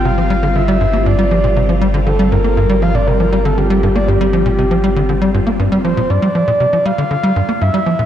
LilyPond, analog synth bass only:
\new Staff \with { instrumentName = "Analog synth bass" } { \clef bass \time 4/4 \key g \dorian \tempo 4 = 119 c16 f16 g16 d16 d16 g16 g,16 bes16 g,16 g16 f16 bes,16 c16 f16 g16 d16 | d16 g16 g,16 bes16 g,16 g16 f16 bes,16 c16 f16 g16 d16 d16 g16 g,16 bes16 | g,16 g16 f16 bes,16 c16 f16 g16 d16 d16 g16 g,16 bes16 g,16 g16 f16 bes,16 | g,16 g16 f16 bes,16 c16 f16 g16 d16 d16 g16 g,16 bes16 g,16 g16 f16 bes,16 | }